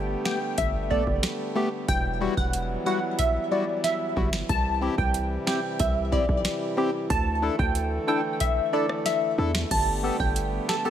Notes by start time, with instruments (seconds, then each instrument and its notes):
Already playing: 808-style bass G1, harmonium D3 G3 A3 B3 G4
0.25 synth stab A3 B3 G4, synth pluck G5, finger snap, snare
0.58 808-style bass G1, synth pluck E5, kick, closed hi-hat
0.90 synth stab A3 B3 A4, synth pluck D5, kick
1.07 808-style bass F#1, kick
1.23 finger snap, snare, closed hi-hat
1.55 synth stab A3 B3 G4
1.88 808-style bass E1, harmonium E3 F#3 E4, synth pluck G5, kick, closed hi-hat
2.21 synth stab G3 E4 F#4
2.37 808-style bass E1, synth pluck F#5, kick
2.53 closed hi-hat
2.86 synth stab G3 E4 F#4, synth pluck F#5
3.19 synth pluck E5, kick, closed hi-hat
3.51 synth stab G3 E4 F#4, synth pluck D5
3.84 synth pluck E5, snare, closed hi-hat
4.16 808-style bass G1, synth stab G3 E4 F#4, kick
4.33 finger snap, snare
4.49 808-style bass C2, harmonium C3 E4 G4, synth pluck A5, kick, closed hi-hat
4.81 synth stab C4 E4 G4
4.98 808-style bass C2, synth pluck G5, kick
5.14 closed hi-hat
5.47 synth stab C4 E4 G4, synth pluck G5, finger snap, snare
5.79 808-style bass C2, synth pluck E5, kick, closed hi-hat
6.12 synth stab C4 E4 G4, synth pluck D5, kick
6.29 808-style bass B1, kick
6.45 finger snap, snare, closed hi-hat
6.77 synth stab C4 E4 G4
7.10 808-style bass D2, harmonium D3 A3 A4, synth pluck A5, kick, closed hi-hat
7.42 synth stab D4 E4 A4
7.59 808-style bass D2, synth pluck G5, kick
7.75 closed hi-hat
8.08 synth stab D4 E4 A4, synth pluck G5
8.40 synth pluck E5, kick, closed hi-hat
8.73 synth stab D4 E4 A4, synth pluck D5
8.89 cross-stick
9.06 synth pluck E5, snare, closed hi-hat
9.38 808-style bass E2, synth stab D4 E4 A4
9.55 finger snap, snare
9.71 808-style bass G1, harmonium D3 G3 A3 B3 G4, synth pluck A5, kick, closed hi-hat, crash
10.03 synth stab B3 G4 A4
10.20 808-style bass G1, synth pluck G5, kick
10.36 closed hi-hat
10.69 synth stab G4 A4, synth pluck A5, finger snap, snare
10.85 synth stab B3 G4 A4, synth pluck A5